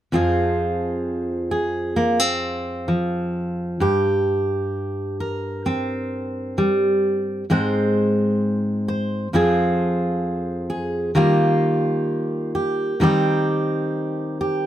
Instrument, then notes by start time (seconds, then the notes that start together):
steel-string acoustic guitar
0.12 F2 F3 C4 F4 G#4
1.51 G#4
1.96 A#3
2.20 C4
2.88 F3
3.80 G2 G4
5.20 A#4
5.66 C4
6.58 G3
7.50 G#2 G#3 C4 C5
8.88 C5
9.33 F2 F3 C4 F4 G#4
10.70 G#4
11.15 D#3 G3 A#3 F4 G4
12.55 G4
13.00 D#3 G3 C4 D#4 G4
14.41 G4